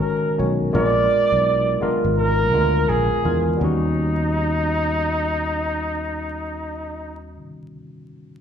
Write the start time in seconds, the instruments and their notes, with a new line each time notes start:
Already playing: tine electric piano D#3 G#3 C#4 F#4 A4 A#4, flugelhorn A#4
0.38 fretless electric bass B1, tine electric piano D#3 G#3 C#4 F#4 C#5
0.73 fretless electric bass A#1, tine electric piano G#3 B3 D4 F4 A#4, flugelhorn D5
1.32 fretless electric bass B1
1.81 tine electric piano G#3 B3 D4 F4 A#4, muted fretless electric bass stroke
2.04 fretless electric bass G#1
2.17 flugelhorn A#4
2.52 fretless electric bass D2, tine electric piano G#3 B3 D4 F4 A#4
2.61 tine electric piano A#4
2.89 fretless electric bass A#1, flugelhorn G#4
3.24 fretless electric bass E2, tine electric piano G#3 B3 D4 F4 A#4
3.57 tine electric piano G3 B3 C#4, flugelhorn D#4
3.61 fretless electric bass D#2, tine electric piano D#4 F#4